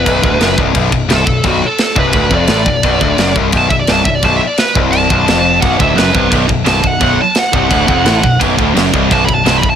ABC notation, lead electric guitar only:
X:1
M:4/4
L:1/8
Q:1/4=172
K:Bphr
V:1 name="Lead electric guitar"
B3 z3 A2 | F A2 B2 d3- | d3 z (3a e d (3a e d | (3a e d B z a4 |
f e B2 z2 a f- | f a f6 | z4 (3a b a (3a b a |]